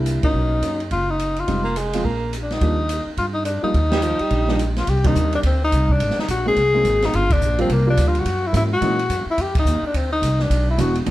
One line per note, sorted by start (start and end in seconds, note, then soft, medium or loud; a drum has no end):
0.00 0.20 C2 medium
0.00 0.21 G3 medium
0.00 0.22 A#3 soft
0.00 0.21 D4 soft
0.00 0.22 E4 medium
0.06 hi-hat pedal medium
0.06 ride medium
0.23 0.60 F#3 medium
0.23 0.60 A#3 medium
0.23 0.60 C#4 medium
0.23 0.61 D#4 medium
0.23 0.87 D#4 medium
0.23 muted upright bass stroke soft
0.23 kick medium
0.23 ride medium
0.33 0.60 B1 medium
0.62 0.88 F#2 medium
0.62 0.78 F#3 soft
0.62 0.78 A#3 soft
0.62 0.78 C#4 soft
0.62 0.78 D#4 soft
0.62 hi-hat pedal soft
0.62 ride medium
0.80 ride soft
0.91 1.45 F#1 medium
0.91 1.12 F4 medium
0.91 kick soft
0.91 ride soft
1.11 1.41 D#4 medium
1.19 hi-hat pedal soft
1.19 ride soft
1.36 1.77 F4 medium
1.36 ride soft
1.47 2.01 F1 medium
1.47 1.63 G3 medium
1.47 1.63 G#3 soft
1.47 1.63 C4 medium
1.47 1.63 D#4 medium
1.47 kick soft
1.47 ride medium
1.64 1.78 A#3 medium
1.76 2.06 G#3 medium
1.76 hi-hat pedal soft
1.76 ride medium
1.93 2.03 F3 medium
1.93 2.04 G#3 medium
1.93 2.04 C4 medium
1.93 2.04 F4 medium
1.93 ride medium
2.05 2.58 A#1 medium
2.05 2.33 A#3 medium
2.05 kick soft
2.33 hi-hat pedal soft
2.33 ride medium
2.43 2.55 D4 medium
2.50 3.08 D#4 loud
2.50 snare soft
2.50 ride soft
2.61 3.03 D#2 medium
2.61 2.77 F3 medium
2.61 2.77 G3 medium
2.61 2.77 A#3 medium
2.61 2.77 D4 medium
2.61 kick soft
2.61 ride medium
2.89 hi-hat pedal medium
2.89 ride medium
3.06 muted upright bass stroke soft
3.17 3.60 G2 medium
3.17 3.26 F4 medium
3.17 kick soft
3.17 ride soft
3.34 3.44 D#4 medium
3.45 3.61 D4 medium
3.45 hi-hat pedal medium
3.45 ride medium
3.62 3.72 F3 medium
3.62 3.73 G3 medium
3.62 3.73 A#3 medium
3.62 4.72 D#4 loud
3.62 3.73 F4 medium
3.62 muted upright bass stroke soft
3.74 4.16 D#2 medium
3.74 kick soft
3.74 ride soft
3.91 4.04 G3 medium
3.91 snare medium
3.91 ride soft
4.02 4.22 F3 medium
4.02 hi-hat pedal soft
4.02 ride medium
4.19 4.77 G3 medium
4.19 muted upright bass stroke soft
4.19 ride soft
4.30 4.84 A#1 medium
4.30 kick soft
4.30 ride soft
4.48 4.58 F3 medium
4.48 4.58 G3 soft
4.48 4.58 A#3 medium
4.48 4.58 D4 medium
4.48 snare soft
4.59 hi-hat pedal soft
4.59 ride medium
4.76 4.91 F4 medium
4.76 snare soft
4.76 ride soft
4.87 5.14 C2 medium
4.87 5.08 G4 medium
4.87 kick soft
4.87 ride medium
5.04 5.41 D#3 medium
5.04 5.41 G3 medium
5.04 5.41 A#3 medium
5.04 5.41 C4 medium
5.04 5.41 D4 medium
5.04 5.34 D#4 medium
5.04 kick medium
5.04 ride medium
5.15 5.43 D#2 medium
5.15 hi-hat pedal medium
5.32 5.40 D4 medium
5.32 ride soft
5.43 5.71 D2 medium
5.43 5.61 C4 medium
5.43 kick soft
5.43 ride medium
5.65 5.94 D#4 loud
5.72 5.99 C2 medium
5.72 kick soft
5.72 hi-hat pedal soft
5.72 ride medium
5.89 6.22 D4 loud
5.89 kick soft
6.00 6.15 G#1 medium
6.00 ride medium
6.10 snare soft
6.19 6.30 D#4 medium
6.19 snare soft
6.28 6.55 A#1 medium
6.28 6.45 F#4 medium
6.28 kick soft
6.28 hi-hat pedal medium
6.28 ride medium
6.45 6.55 F#3 medium
6.45 6.55 G#3 medium
6.45 6.55 A#3 medium
6.45 6.55 C4 medium
6.45 6.55 D#4 medium
6.45 7.07 G#4 loud
6.56 6.83 C2 medium
6.56 kick soft
6.56 ride medium
6.74 7.10 F#3 medium
6.74 7.10 G#3 medium
6.74 7.10 A#3 medium
6.74 7.11 C4 medium
6.74 7.11 D#4 medium
6.85 7.12 G#1 medium
6.85 kick soft
6.85 hi-hat pedal medium
6.85 ride medium
7.02 7.17 D#4 medium
7.02 snare soft
7.02 ride soft
7.13 7.40 G1 medium
7.13 7.34 F4 loud
7.13 kick soft
7.13 ride medium
7.30 7.59 D4 medium
7.30 kick medium
7.30 ride medium
7.40 7.68 A#1 medium
7.40 hi-hat pedal medium
7.58 7.68 F3 medium
7.58 7.68 G3 medium
7.58 7.68 A#3 medium
7.58 7.74 C4 medium
7.58 7.68 D4 medium
7.58 7.68 F4 medium
7.58 ride soft
7.69 7.96 C2 medium
7.69 7.88 A#3 medium
7.69 kick soft
7.69 ride medium
7.87 8.23 F3 medium
7.87 8.23 G3 medium
7.87 8.23 A#3 medium
7.87 8.23 D4 medium
7.87 8.09 D4 medium
7.87 8.23 F4 medium
7.97 8.24 D2 loud
7.97 kick soft
7.97 hi-hat pedal medium
7.97 ride medium
8.08 8.21 F4 medium
8.15 ride soft
8.20 8.49 F#4 loud
8.25 8.52 F#2 medium
8.25 kick soft
8.25 ride medium
8.47 8.56 E4 medium
8.52 8.81 G#2 medium
8.52 8.68 E3 medium
8.52 8.68 G#3 soft
8.52 8.68 A#3 medium
8.52 8.68 C#4 soft
8.52 8.69 F#4 medium
8.52 kick soft
8.52 hi-hat pedal medium
8.52 ride medium
8.57 8.64 E4 medium
8.74 9.24 F#4 medium
8.81 9.09 A#2 medium
8.81 8.97 E3 medium
8.81 8.97 G#3 medium
8.81 8.97 A#3 medium
8.81 8.97 C#4 medium
8.81 8.97 D#4 medium
8.81 kick soft
8.81 ride medium
8.99 ride soft
9.09 9.25 F#2 medium
9.09 kick soft
9.09 hi-hat pedal soft
9.09 ride medium
9.26 muted upright bass stroke soft
9.31 9.43 E4 medium
9.38 9.64 F2 medium
9.38 9.57 G4 medium
9.38 kick soft
9.38 ride medium
9.55 kick medium
9.55 ride medium
9.59 9.83 D#4 medium
9.65 9.81 D#2 medium
9.65 hi-hat pedal medium
9.82 muted upright bass stroke soft
9.87 9.98 D4 medium
9.94 10.21 D2 medium
9.94 10.12 C4 medium
9.94 kick soft
9.94 ride medium
10.12 10.44 D#4 medium
10.22 10.49 C2 medium
10.22 kick soft
10.22 hi-hat pedal medium
10.22 ride medium
10.39 10.69 D4 medium
10.39 snare soft
10.50 10.77 B1 medium
10.50 kick soft
10.50 ride medium
10.71 10.82 E4 medium
10.78 11.05 E1 loud
10.78 10.93 E3 medium
10.78 10.93 G#3 medium
10.78 10.94 B3 medium
10.78 10.93 D4 medium
10.78 10.94 F#4 medium
10.78 10.97 F#4 medium
10.78 kick soft
10.78 hi-hat pedal medium
10.78 ride medium
10.95 ride soft
11.06 11.11 F#1 medium
11.06 11.11 E3 medium
11.06 11.11 G#3 medium
11.06 11.11 B3 medium
11.06 11.11 D4 medium
11.06 11.11 F#4 medium
11.06 kick soft
11.06 ride medium